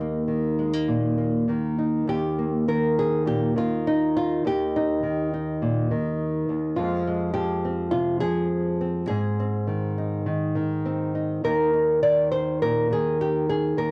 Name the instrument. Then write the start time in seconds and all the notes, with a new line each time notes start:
nylon-string guitar
Already playing: D#2 D#4
0.01 A#3
0.28 D#3
0.59 G#3
0.73 A#3
0.88 A#2
1.18 A#3
1.48 D#3 A#3
1.79 D#4
2.08 D#2 G4
2.39 A#3
2.68 D#3 A#4
2.99 G#4
3.26 A#2 G4
3.56 D#3 F4
3.87 D#4
4.16 F4
4.45 D#2 G4
4.76 D#4
5.03 D#3
5.33 D#4
5.62 A#2
5.91 D#3
6.49 D#2
6.77 F2 F3 G#3 F4
6.81 C4
7.07 G#3
7.34 F3 G4
7.65 C4
7.91 C3 F4
8.20 F3 G#4
8.81 C4
9.07 G#2 G#4
9.40 C4
9.67 D#3
9.98 D#4
10.26 D#3
10.55 D#3
10.86 C4
11.15 D#4
11.44 D#2 D#3 D#4 A#4
11.74 D#4
12.03 D#3 D5
12.32 C5
12.62 A#2 A#4
12.91 D#3 G#4
13.21 G4
13.49 G#4
13.77 D#2 A#4